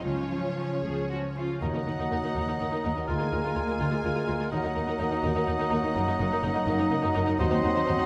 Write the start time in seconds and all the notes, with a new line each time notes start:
Already playing: G#3 G#4
0.04 C#2 C#3 F3 C#4 F4 C#5
0.30 F3 C#4
0.57 F3 C#4
0.83 C#2 F3 C#4 G#4
1.09 F3 C#4 F4 F#4
1.35 F3 C#4 F4 G#4
1.61 D#2 D#3 F#3 A#3 D#4 F#4 A#4 D#5 F#5 A#5
1.73 D#2 D#4 A#4
1.86 D#2 A#3 D#4 A#4
1.98 D#2 D#4 F#4 A#4
2.11 D#2 A#3 D#4 A#4
2.23 D#2 D#4 A#4
2.35 D#2 D#4 A#4
2.47 D#2 D#4 A#4
2.59 D#2 D#4 A#4 F#5
2.72 D#2 D#4 F#4 A#4
2.84 D#2 A#3 D#4 A#4
2.96 D#2 D#4 A#4
3.08 D2 D3 G#3 F4 G#4 A#4 F5 G#5
3.19 D2 G#3 F4 A#4
3.32 D2 A#3 F4 A#4
3.44 D2 F4 A#4
3.55 D2 F4 A#4
3.67 D2 F4 A#4
3.79 D2 F4 A#4 F5
3.91 D2 F4 A#4 G#5
4.03 D2 F4 A#4 F5
4.15 D2 F4 G#4 A#4
4.27 D2 F4 A#4
4.39 D2 F4 A#4
4.51 D#2 D#3 F#3 A#3 D#4 F#4 A#4 D#5 F#5 A#5
4.64 D#2 A#3 D#4 A#4
4.75 D#2 D#4 A#4
4.87 D#2 D#4 A#4
4.99 D#2 D#4 A#4
5.11 D#2 D#4 A#4
5.23 D#2 D#4 A#4 F#5
5.35 D#2 D#4 A#4
5.47 D#2 D#4 A#4
5.59 D#2 D#4 A#4
5.70 D#2 D#4 A#4
5.82 D#2 D#4 A#4
5.95 F#1 F#2 D#4 A#4
6.07 F#2 F#3 D#4 A#4
6.19 F#1 F#2 A#3 D#4 A#4
6.31 F#2 D#4 A#4
6.43 F#1 F#2 D#4 F#4 A#4
6.55 F#2 D#4 A#4
6.66 F#1 F#2 D#4 A#4 D#5
6.79 F#2 D#4 A#4
6.91 F#1 F#2 D#4 A#4
7.02 F#2 D#4 F#4 A#4
7.14 F#1 F#2 D#4 A#4
7.26 F#2 A#3 D#4 A#4
7.39 D#2 D#3 F#3 C4 D#4 F#4 C5 D#5 F#5 C6
7.51 D#2 C4 D#4 C5
7.63 D#2 D#4 C5
7.75 D#2 D#4 C5
7.86 D#2 D#4 C5
7.98 D#2 D#4 C5 D#5